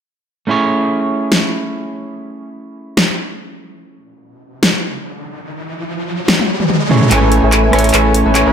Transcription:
0.47 clean electric guitar A3 C#4 E4 G#4 C#5
1.32 snare
2.97 snare
3.80 riser
4.63 snare
6.28 snare, high tom
6.39 high tom
6.60 mid tom
6.70 mid tom
6.89 clean electric guitar A3 C#4 E4 G#4 C#5, mid tom
7.01 mid tom
7.09 sub bass A1, clean electric guitar A3 C#4 E4 G#5, string section A3 C#4, supersaw synth A3 A4 B4 C#5 G#5, harp G#4, clap, closed hi-hat, riser
7.13 clean electric guitar C#5
7.22 harp A4
7.32 harp C#5, closed hi-hat
7.43 sub bass A1, supersaw synth A3 A4 B4 C#5 G#5, harp E5
7.52 harp G#5, clap, closed hi-hat
7.63 harp E5
7.71 sub bass A1, clean electric guitar A3 C#4 E4 G#5, supersaw synth A3 A4 B4 C#5 G#5, harp C#5, cross-stick, closed hi-hat
7.75 clean electric guitar C#5, closed hi-hat
7.84 harp A4, closed hi-hat
7.89 closed hi-hat
7.94 sub bass A1, supersaw synth A3 A4 B4 C#5 G#5, harp G#4, clap, closed hi-hat
8.05 harp A4
8.14 harp C#5, closed hi-hat
8.26 sub bass A1, supersaw synth A3 A4 B4 C#5 G#5, harp E5
8.34 clean electric guitar A3 C#4 E4 C#5 G#5, harp G#5, clap, closed hi-hat
8.46 sub bass A1, supersaw synth A3 A4 B4 C#5 B5, harp E5

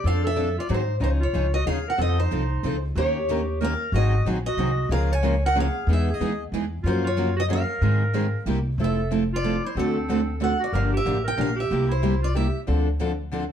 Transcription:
0.04 upright bass F2, steel-string acoustic guitar F3 C4 D4 A4 F5, clarinet A4
0.24 clarinet A4, steel-string acoustic guitar E5
0.36 steel-string acoustic guitar F3 C4 D4 A4
0.58 clarinet F4, steel-string acoustic guitar D5
0.69 upright bass G#2, steel-string acoustic guitar D#3 F#3 C4 D#4 G#4, clarinet D#4
0.74 steel-string acoustic guitar C5
1.00 upright bass C#2, steel-string acoustic guitar C#3 F3 C#4 D#4 G#4 C5, clarinet D#4
1.20 clarinet F4, steel-string acoustic guitar C#5
1.33 upright bass C#2, steel-string acoustic guitar C#3 F3 C#4 D#4 G#4
1.54 clarinet F#4, steel-string acoustic guitar D#5
1.66 upright bass D#2, steel-string acoustic guitar C#3 F3 C#4 D#4 G#4 F5, clarinet G#4
1.88 clarinet A#4, steel-string acoustic guitar F#5
1.98 upright bass F2, steel-string acoustic guitar F3 C4 D#4 A4 D#5, clarinet A4
2.19 clarinet D#4, steel-string acoustic guitar C5
2.31 upright bass C2, steel-string acoustic guitar F3 C4 D#4 A4
2.63 upright bass C#2, steel-string acoustic guitar F3 C4 D#4 A4
2.95 upright bass D#2, steel-string acoustic guitar D#3 A#3 C#4 G4 A#4 C#5, clarinet G4
3.30 steel-string acoustic guitar D#3 A#3 C#4 G4 A#4
3.61 steel-string acoustic guitar D#3 A#3 C#4 G4 A#4 F5, clarinet A#4
3.92 upright bass G#1, steel-string acoustic guitar D#3 F#3 C4 D#4 G#4 D#5, clarinet F#4
4.25 upright bass A#1, steel-string acoustic guitar D#3 F#3 C4 D#4 G#4
4.46 clarinet F#4, steel-string acoustic guitar D#5
4.57 upright bass C2, steel-string acoustic guitar D#3 F#3 C4 D#4 G#4
4.89 upright bass C#2, steel-string acoustic guitar C#3 F3 G#3 A#3 C#4 F4 G#4 A#4 F5, clarinet G#4
5.12 clarinet C#5, steel-string acoustic guitar G#5
5.23 steel-string acoustic guitar C#3 F3 G#3 A#3 C#4 F4 G#4 A#4
5.45 clarinet A#4, steel-string acoustic guitar F#5
5.55 steel-string acoustic guitar C#3 F3 G#3 A#3 C#4 F4 G#4 A#4, clarinet G#4
5.60 steel-string acoustic guitar F5
5.87 upright bass E2, steel-string acoustic guitar E3 G#3 B3 D#4 G#4, clarinet G#4
5.93 steel-string acoustic guitar E5
6.10 clarinet G#4
6.14 steel-string acoustic guitar D#5
6.20 upright bass D#2, steel-string acoustic guitar E3 G#3 B3 D#4 G#4
6.52 upright bass E2, steel-string acoustic guitar E3 G#3 B3 D#4 G#4
6.83 upright bass F#2, steel-string acoustic guitar C#3 F3 F#3 A#3 F4 A#4, clarinet F4
6.87 steel-string acoustic guitar C#4 F#4 C5
7.04 clarinet F4, steel-string acoustic guitar C#5
7.17 steel-string acoustic guitar C#3 F3 F#3 A#3 C#4 F4 F#4 A#4
7.37 clarinet F#4, steel-string acoustic guitar D#5
7.48 steel-string acoustic guitar C#3 F3 F#3 A#3 C#4 F4 F#4 A#4, clarinet A#4
7.53 steel-string acoustic guitar F5
7.81 upright bass G#2, steel-string acoustic guitar D#3 G#3 C4 D#4 G#4
8.14 steel-string acoustic guitar D#3 G#3 C4 D#4 G#4
8.46 upright bass C2, steel-string acoustic guitar C3 G3 A#3 E4 G4
8.78 upright bass F1, steel-string acoustic guitar F3 A3 C4 E4 A4, clarinet A4
8.84 steel-string acoustic guitar E5
9.11 steel-string acoustic guitar F3 A3 C4 E4 A4
9.33 clarinet F4, steel-string acoustic guitar D5
9.43 steel-string acoustic guitar F3 A3 C4 E4 A4
9.65 clarinet E4, steel-string acoustic guitar C5
9.75 upright bass D2, steel-string acoustic guitar D3 A3 C4 F#4 A4, clarinet C4
9.79 steel-string acoustic guitar A4
10.09 steel-string acoustic guitar D3 A3 C4 F#4 A4
10.40 steel-string acoustic guitar D3 A3 C4 F#4 A4 F#5, clarinet A4
10.60 clarinet F#4
10.64 steel-string acoustic guitar D5
10.72 upright bass G1, steel-string acoustic guitar D3 F3 A#3 D4 G4 F5, clarinet A#4
10.93 clarinet G4
10.97 steel-string acoustic guitar E5
11.05 upright bass A1, steel-string acoustic guitar D3 F3 A#3 D4 G4
11.24 clarinet A#4, steel-string acoustic guitar G5
11.36 upright bass A#1, steel-string acoustic guitar D3 F3 A#3 D4 G4, clarinet A#4
11.41 steel-string acoustic guitar F5
11.56 clarinet G4
11.60 steel-string acoustic guitar E5
11.71 upright bass C2, steel-string acoustic guitar C3 G3 A#3 E4 G4
11.89 clarinet E4, steel-string acoustic guitar C5
12.02 steel-string acoustic guitar C3 G3 A#3 E4 G4
12.22 clarinet F4, steel-string acoustic guitar D5
12.35 steel-string acoustic guitar C3 G3 A#3 E4 G4 E5, clarinet G4
12.67 upright bass D2, steel-string acoustic guitar D3 F3 C4 D4 A4
13.00 steel-string acoustic guitar D3 F3 C4 D4 A4
13.32 steel-string acoustic guitar D3 F3 C4 D4 A4

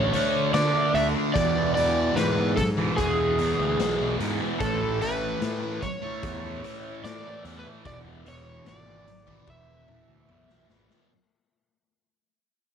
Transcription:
Already playing: distorted electric guitar A3 D4, electric slide guitar C#5
0.12 distorted electric guitar D3 A3 D4, closed hi-hat
0.53 distorted electric guitar D3 A3 D4, picked electric bass D3, electric slide guitar D5, snare, closed hi-hat
0.73 distorted electric guitar A3 D4
0.94 picked electric bass D2, distorted electric guitar D3 A3 D4, electric slide guitar E5, closed hi-hat
1.15 distorted electric guitar A3 D4
1.34 distorted electric guitar E2 B2, picked electric bass E2, electric slide guitar D5, kick, closed hi-hat
1.38 distorted electric guitar E3
1.55 distorted electric guitar B2 E3
1.75 distorted electric guitar E2 B2, electric slide guitar D5, closed hi-hat
1.79 distorted electric guitar E3
2.15 distorted electric guitar E2 B2 E3, picked electric bass G#2, electric slide guitar B4, snare, closed hi-hat
2.36 distorted electric guitar B2 E3
2.56 electric slide guitar A4, muted distorted electric guitar stroke, kick, closed hi-hat
2.77 distorted electric guitar B2 E3
2.97 picked electric bass E2, electric slide guitar G#4, kick, closed hi-hat
3.38 distorted electric guitar E2 B2 E3, closed hi-hat
3.59 picked electric bass D2
3.78 picked electric bass B1, distorted electric guitar E2 B2 E3, snare, closed hi-hat
3.99 distorted electric guitar B2 E3
4.19 distorted electric guitar E2 B2 E3, picked electric bass G#2, closed hi-hat
4.40 distorted electric guitar B2 E3
4.60 picked electric bass A1, distorted electric guitar A2 E3 A3, electric slide guitar A4, kick, closed hi-hat
4.81 distorted electric guitar E3 A3
5.01 distorted electric guitar A2 E3 A3, electric slide guitar B4, closed hi-hat
5.41 distorted electric guitar A2 E3 A3, picked electric bass A2, snare, closed hi-hat
5.61 distorted electric guitar E3 A3
5.82 electric slide guitar C#5, muted distorted electric guitar stroke, kick, closed hi-hat
6.02 distorted electric guitar E3 A3
6.23 picked electric bass E2, kick, closed hi-hat
6.62 distorted electric guitar A2 E3 A3, closed hi-hat
7.04 distorted electric guitar A2 E3 A3, picked electric bass A2, electric slide guitar D5, snare, closed hi-hat
7.24 distorted electric guitar E3 A3
7.44 picked electric bass E2, distorted electric guitar A2 E3 A3, closed hi-hat
7.59 electric slide guitar B4
7.64 distorted electric guitar E3 A3
7.84 picked electric bass E1, distorted electric guitar E2 B2 E3, electric slide guitar D5, kick, closed hi-hat
8.04 distorted electric guitar B2 E3
8.25 distorted electric guitar E2 B2 E3, electric slide guitar C#5, closed hi-hat
8.65 picked electric bass G#1, distorted electric guitar E2 B2 E3, electric slide guitar D5, snare, closed hi-hat
8.86 distorted electric guitar B2 E3
9.07 muted distorted electric guitar stroke, closed hi-hat
9.26 distorted electric guitar B2 E3, kick
9.47 picked electric bass E1, electric slide guitar E5, kick, high tom
9.87 distorted electric guitar E2 B2 E3, mid tom
10.08 picked electric bass D2
10.28 picked electric bass B1, distorted electric guitar E2 B2 E3, mid tom
10.48 distorted electric guitar B2 E3, snare
10.68 picked electric bass G#1, distorted electric guitar E2 B2 E3, snare
10.89 distorted electric guitar B2 E3, snare

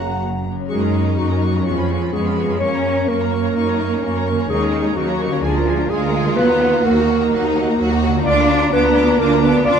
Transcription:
Already playing: double bass section F#1, cello section F#2, harp F#2 F#3 C#4 A#4, french horn section C#3 A#3, bassoon C#3, clarinet A#3, viola section F#4, violin section F#5 A#5, cor anglais F#5, flute A#5
0.52 harp F#2
0.56 harp F#3
0.60 harp C#4
0.65 clarinet G#4, harp A#4
0.69 double bass section F#2, cello section G#3, viola section A#3 F#4, violin section D#4 C#6
0.81 viola section C#4 A#4, violin section A#5
0.93 viola section A#3 F#4, violin section C#6
1.04 viola section C#4 A#4, violin section A#5
1.17 double bass section F#2, cello section F#3, viola section A#3 F#4, clarinet F#4, violin section C#6
1.29 viola section C#4 A#4, violin section A#5
1.41 viola section A#3 F#4, violin section C#6
1.48 harp F2
1.52 harp G#3, viola section C#4 A#4, violin section A#5
1.57 harp C#4
1.61 harp B4, violin section C#6
1.66 double bass section F2, cello section F3, viola section B3 G#4, violin section C#4, clarinet F4
1.77 viola section C#4 F4, violin section B5
1.89 viola section B3 G#4, violin section C#6
2.01 viola section C#4 F4, violin section B5
2.12 double bass section F2, cello section G#3, violin section B3 C#6, viola section B3 G#4, clarinet G#4
2.25 viola section C#4 F4, violin section B5
2.37 viola section B3 G#4, violin section C#6
2.43 harp F#2
2.48 harp A#3, viola section C#4 F4, violin section B5
2.52 harp C#4
2.57 violin section A#3, harp A#4, viola section A#4, clarinet C#5
2.61 double bass section F#2, viola section A#3, cello section C#4, violin section C#6
2.73 viola section C#4 C#5, violin section A#5
2.85 viola section A#3 A#4, violin section C#6
2.96 viola section C#4 C#5, violin section A#5
3.07 double bass section F#2, viola section A#3 A#4, cello section A#3, clarinet A#4, violin section C#6
3.20 viola section C#4 C#5, violin section A#5
3.31 viola section A#3 A#4, violin section C#6
3.44 viola section C#4 C#5, violin section A#5
3.55 double bass section F#2, viola section A#3 A#4, violin section D#4 C#6
3.67 viola section C#4 C#5, violin section A#5
3.78 viola section A#3 A#4, violin section C#6
3.89 viola section C#4 C#5, violin section A#5
4.02 double bass section F#2, viola section A#3 A#4, violin section C#4 C#6
4.14 viola section C#4 C#5, violin section A#5
4.26 viola section A#3 A#4, violin section C#6
4.32 harp D#3
4.36 harp A#3, viola section C#4 C#5, violin section A#5
4.41 harp C#4
4.45 harp A#4
4.50 double bass section D#2, timpani D#3, cello section G#3, violin section D#4 C#6, viola section D#4 A#4, clarinet G#4
4.62 viola section C#4 C#5, violin section A#5
4.73 viola section D#4 A#4, violin section C#6
4.84 viola section C#4 C#5, violin section A#5
4.96 double bass section D#2, cello section F#3, violin section A#3 C#6, viola section D#4 A#4, clarinet F#4
5.08 viola section C#4 C#5, violin section A#5
5.20 viola section D#4 A#4, violin section C#6
5.26 harp D3
5.31 harp A#3, viola section C#4 C#5, violin section A#5
5.35 harp F4
5.40 double bass section D2, violin section D4 G#5, harp G#4
5.44 cello section F3, viola section G#3 G#4, clarinet F4
5.56 viola section A#3 A#4, violin section A#5
5.67 viola section G#3 G#4, violin section G#5
5.79 viola section A#3 A#4, violin section A#5
5.90 double bass section D2, viola section G#3 G#4, cello section G#3, violin section F4 G#5, clarinet G#4
6.01 viola section A#3 A#4, violin section A#5
6.13 viola section G#3 G#4, violin section G#5
6.21 harp D#3, viola section A#3 A#4
6.25 harp A#3, violin section A#5
6.30 harp D#4
6.34 double bass section D#2, viola section F#3 F#4, harp F#4, clarinet B4
6.38 timpani D#3, cello section B3, violin section F#5
6.49 viola section A#3 D#4, violin section A#5
6.60 viola section F#3 F#4, violin section F#5
6.72 viola section A#3 D#4, violin section A#5
6.83 double bass section D#2, viola section F#3 F#4, cello section A#3, violin section F#4 F#5, clarinet A#4
6.97 viola section A#3 D#4, violin section A#5
7.07 viola section F#3 F#4, violin section F#5
7.20 viola section A#3 D#4, violin section A#5
7.31 double bass section D#2, viola section F#3 F#4, violin section D#4 F#5
7.43 viola section A#3 D#4, violin section A#5
7.55 viola section F#3 F#4, violin section F#5
7.68 viola section A#3 D#4, violin section A#5
7.79 double bass section D#2, viola section F#3 F#4, violin section F#4 F#5
7.91 viola section A#3 D#4, violin section A#5
8.02 viola section F#3 F#4, violin section F#5
8.08 harp D3
8.12 harp A#3, viola section A#3 D#4
8.16 harp F4, violin section A#5
8.25 double bass section D2, viola section D4 F4, cello section D4, violin section F4 D6, clarinet D5
8.37 viola section A#3 D4, violin section A#5
8.50 viola section D4 F4, violin section D6
8.61 viola section A#3 D4, violin section A#5
8.73 double bass section D2, cello section B3, violin section D4 D6, viola section D4 F4, clarinet B4
8.85 viola section A#3 D4, violin section A#5
8.97 viola section D4 F4, violin section D6
9.09 viola section A#3 D4, violin section A#5
9.19 double bass section D2, cello section A#3, viola section D4 F4, clarinet A#4, violin section D6
9.33 viola section A#3 D4, violin section A#5
9.43 cello section B3, viola section D4 F4, clarinet B4, violin section D6
9.57 viola section A#3 D4, violin section A#5
9.66 double bass section D2, cello section D4, viola section D4 F4, violin section F4 D6, clarinet D5

